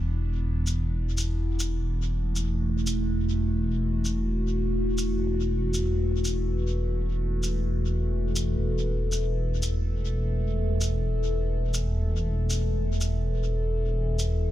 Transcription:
Already playing: E1 E3 B3 D4
0.67 shaker
1.18 shaker
1.60 shaker
1.81 E1 A3 F#4
2.36 shaker
2.87 shaker
4.05 shaker
4.98 shaker
5.74 shaker
6.25 shaker
7.43 shaker
8.36 shaker
8.57 E1 A4
9.12 shaker
9.63 shaker
10.81 shaker
11.74 shaker
12.50 shaker
13.01 shaker
14.19 shaker

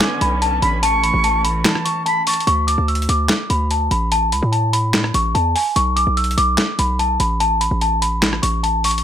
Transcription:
Already playing: D3 B3 C#4 G#5 D6
0.01 snare, clap, closed hi-hat
0.21 B1 B5, closed hi-hat
0.42 A5, closed hi-hat
0.62 A1 B5, closed hi-hat
0.83 E3 A3 A5 C#6, closed hi-hat
1.03 B5, closed hi-hat
1.14 A1
1.24 A5, closed hi-hat
1.44 B5, closed hi-hat
1.65 A5, snare, clap, closed hi-hat
1.75 cross-stick
1.85 C#6, closed hi-hat
2.06 A5 B5, closed hi-hat
2.27 A5 C#6, closed hi-hat, open hi-hat
2.34 closed hi-hat
2.40 closed hi-hat
2.47 D2 C#6, closed hi-hat
2.67 D6, closed hi-hat
2.78 D2
2.88 E6, closed hi-hat
2.95 closed hi-hat
3.02 closed hi-hat
3.09 D2 D6, closed hi-hat
3.29 snare, clap, closed hi-hat
3.50 D2 B5, closed hi-hat
3.71 A5, closed hi-hat
3.91 A1 B5, closed hi-hat
4.12 A5, closed hi-hat
4.32 C#2 B5, closed hi-hat
4.43 A2
4.52 A5, closed hi-hat
4.73 B5, closed hi-hat
4.94 snare, clap, closed hi-hat
5.04 cross-stick
5.14 A1 C#6, closed hi-hat
5.35 E2 A5, closed hi-hat
5.55 G#5, open hi-hat
5.76 B1 C#6, closed hi-hat
5.96 D6, closed hi-hat
6.07 B1
6.17 E6, closed hi-hat
6.24 closed hi-hat
6.31 closed hi-hat
6.38 B1 D6, closed hi-hat
6.58 snare, clap, closed hi-hat
6.79 B1 B5, closed hi-hat
6.99 A5, closed hi-hat
7.20 A1 B5, closed hi-hat
7.40 A5, closed hi-hat
7.61 B5, closed hi-hat
7.71 A1
7.81 A5, closed hi-hat
8.02 B5, closed hi-hat
8.22 snare, clap, closed hi-hat
8.33 cross-stick
8.42 A1 C#6, closed hi-hat
8.63 A5, closed hi-hat
8.84 C#6, closed hi-hat, open hi-hat
8.91 closed hi-hat
8.98 closed hi-hat

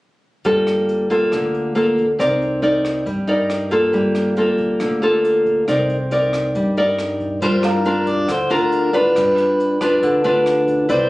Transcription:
0.45 G1 G3 A#3 F4 A4, kick, closed hi-hat
0.67 cross-stick, closed hi-hat
0.89 closed hi-hat
1.10 A#3 F4 A4, kick, closed hi-hat
1.32 D2 D3, kick, cross-stick, closed hi-hat
1.54 closed hi-hat
1.75 A#3 F4 A4, closed hi-hat
1.98 kick, closed hi-hat
2.19 C2 C4 D#4 A#4 D5, kick, cross-stick, closed hi-hat
2.42 closed hi-hat
2.62 D#4 A#4 D5, closed hi-hat
2.85 cross-stick, closed hi-hat
3.06 G2 G3, kick, closed hi-hat
3.27 D#4 A#4 D5, closed hi-hat
3.50 cross-stick, closed hi-hat
3.71 A#3 F4 A4, kick, closed hi-hat
3.93 G1 G3, kick, closed hi-hat
4.15 cross-stick, closed hi-hat
4.36 A#3 F4 A4, closed hi-hat
4.58 kick, closed hi-hat
4.80 D2 D3, kick, cross-stick, closed hi-hat
5.02 A#3 F4 A4, closed hi-hat
5.24 closed hi-hat
5.46 kick, closed hi-hat
5.68 C2 C4 D#4 A#4 D5, kick, cross-stick, closed hi-hat
5.89 closed hi-hat
6.11 D#4 A#4 D5, closed hi-hat
6.33 cross-stick, closed hi-hat
6.55 G2 G3, kick, closed hi-hat
6.77 D#4 A#4 D5, closed hi-hat
6.99 cross-stick, closed hi-hat
7.20 kick, closed hi-hat
7.42 G2 G3 D4 F4 A#4 C5, kick, closed hi-hat
7.63 A#4 F5, cross-stick, closed hi-hat
7.85 D4 F4 A#4, closed hi-hat
8.07 D5, kick, closed hi-hat
8.28 D2 D3 C5, kick, cross-stick, closed hi-hat
8.50 D2 D4 F4 A#4, closed hi-hat
8.72 closed hi-hat
8.93 D4 F4 B4 D5, closed hi-hat
8.97 B4
9.16 G2 G3, kick, cross-stick, closed hi-hat
9.38 closed hi-hat
9.60 closed hi-hat
9.81 D4 F4 B4, kick, cross-stick, closed hi-hat
10.03 D2 D3, kick, closed hi-hat
10.24 D2 D4 F4 B4, closed hi-hat
10.46 cross-stick, closed hi-hat
10.68 kick, closed hi-hat
10.89 C2 C4 E4 B4 C5 D5, kick, closed hi-hat

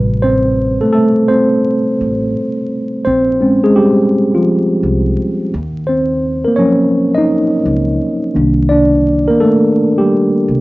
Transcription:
Already playing: A1 C3 G3 B4
0.22 C4 C5
0.81 A3 A4
0.93 A3 A4
1.28 C4 C5
2.01 A1
3.05 A#1 C4 C5
3.41 G#3 C4 C#4
3.64 G#3 G#4
3.76 G3 G4
4.35 F3 F4
4.83 C2
5.54 D#2
5.87 C4 C5
6.45 A#3 A#4
6.56 F3 F#3 C#4 C#5
7.15 D#4 D#5
7.65 C#2
8.35 C2 D#3 A#3 D4
8.69 D4 D5
9.28 A#3 A#4
9.40 A3 A4
9.98 G3 G4
10.48 C2

